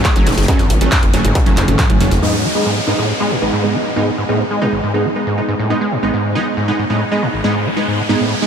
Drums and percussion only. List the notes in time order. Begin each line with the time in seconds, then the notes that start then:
0.05 kick, snare, clap, closed hi-hat
0.16 closed hi-hat
0.26 snare, closed hi-hat, open hi-hat
0.32 snare, closed hi-hat
0.37 snare, closed hi-hat
0.43 snare, closed hi-hat
0.48 kick, closed hi-hat, mid tom
0.59 snare, closed hi-hat
0.70 closed hi-hat, open hi-hat
0.81 closed hi-hat
0.92 kick, snare, clap, closed hi-hat, open hi-hat
1.03 closed hi-hat, mid tom
1.14 closed hi-hat, open hi-hat
1.25 closed hi-hat
1.35 kick, closed hi-hat, high tom
1.46 closed hi-hat, mid tom, high tom
1.57 clap, closed hi-hat, mid tom, open hi-hat
1.68 closed hi-hat, mid tom
1.79 kick, snare, clap, closed hi-hat, mid tom
1.90 closed hi-hat, mid tom
2.00 snare, closed hi-hat, mid tom, open hi-hat
2.11 snare, closed hi-hat, mid tom